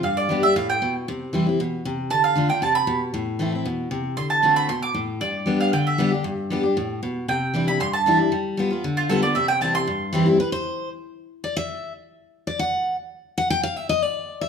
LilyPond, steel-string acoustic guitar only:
\new Staff \with { instrumentName = "Steel-string acoustic guitar" } { \time 4/4 \key c \major \tempo 4 = 232 << { r4 <g b d' g'>8 <d' g'>8 r2 | r4 <e g c' e'>8 <c' e'>8 r2 | r4 <d a d' f'>8 <d' f'>8 r2 | r4 <e a c' e'>8 <c' e'>8 r2 |
r4 <d a c' fis'>4 r2 | r4 <g b d' g'>4 r4 <g b d' g'>8 <d' g'>8 | r4 <g b d' g'>8 <d' g'>8 r2 | r4 <e g d' e'>8 <d' e'>8 r4 <e g d' e'>8 <d' e'>8 |
r4 <g b f'>8 <b f'>8 r4 <g b f'>8 <b f'>8 | r4 <e g c' e'>8 <c' e'>8 r4 <e g c' e'>8 <c' e'>8 | b'8 c''4. r2 | d''8 e''4. r2 |
d''8 fis''4. r4. fis''8 | g''8 f''8 e''8 ees''8 d''4. e''8 | } \\ { g,2 a,4 b,4 | c2 b,4 c4 | d2 c4 b,4 | a,2 b,4 c4 |
d2 b,4 a,4 | g,2 d2 | g,2 a,4 b,4 | c2 g,2 |
g2 d2 | c2 g,2 | r1 | r1 |
r1 | r1 | } >> }